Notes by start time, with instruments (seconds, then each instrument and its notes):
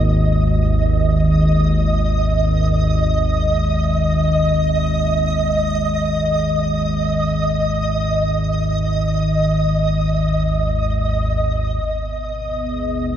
Already playing: synth drone G#1 D#2, synth texture D#5
11.84 synth drone G#1 D#2, analog synth pad B3, synth texture D#5
12.51 analog synth pad G#4
12.67 analog synth pad D#5